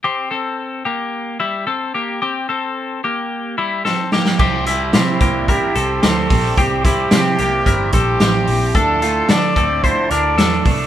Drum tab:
CC |----------------|----------------|x---------------|----------------|
HH |----------------|----------------|--x-x-x-x-x-x-o-|x-x-x-x-x-x-x-o-|
SD |----------------|------------o-oo|----o-------o---|----o-------o---|
BD |----------------|----------------|o-----o-o-----o-|o-o-----o-o-----|

CC |----------------|
HH |x-x-x-x-x-x-x-o-|
SD |----o-------o---|
BD |o-----o-o-----o-|